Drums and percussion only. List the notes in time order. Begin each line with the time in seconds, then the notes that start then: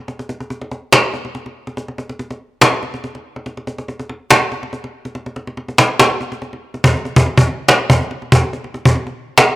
0.08 cajon slap
0.19 cajon slap
0.29 cajon slap
0.40 cajon slap
0.50 cajon slap
0.61 cajon slap
0.71 cajon slap
0.92 cajon slap
1.04 cajon slap
1.14 cajon slap
1.25 cajon slap
1.35 cajon slap
1.46 cajon slap
1.67 cajon slap
1.77 cajon slap
1.88 cajon slap
1.98 cajon slap
2.09 cajon slap
2.19 cajon slap
2.31 cajon slap
2.61 cajon slap
2.73 cajon slap
2.83 cajon slap
2.94 cajon slap
3.04 cajon slap
3.15 cajon slap
3.36 cajon slap
3.46 cajon slap
3.57 cajon slap
3.67 cajon slap
3.78 cajon slap
3.88 cajon slap
4.00 cajon slap
4.09 cajon slap
4.30 cajon slap
4.42 cajon slap
4.52 cajon slap
4.63 cajon slap
4.73 cajon slap
4.84 cajon slap
5.05 cajon slap
5.15 cajon slap
5.26 cajon slap
5.36 cajon slap
5.47 cajon slap
5.57 cajon slap
5.68 cajon slap
5.78 cajon slap
5.99 cajon slap
6.11 cajon slap
6.21 cajon slap
6.32 cajon slap
6.42 cajon slap
6.53 cajon slap
6.74 cajon slap
6.84 cajon bass
6.95 cajon slap
7.05 cajon slap
7.16 cajon bass
7.26 cajon slap
7.38 cajon bass
7.47 cajon slap
7.68 cajon slap
7.80 cajon slap
7.90 cajon bass
8.01 cajon slap
8.11 cajon slap
8.22 cajon slap
8.32 cajon bass
8.43 cajon slap
8.53 cajon slap
8.64 cajon slap
8.74 cajon slap
8.85 cajon bass
8.95 cajon slap
9.07 cajon slap
9.38 cajon slap
9.49 cajon slap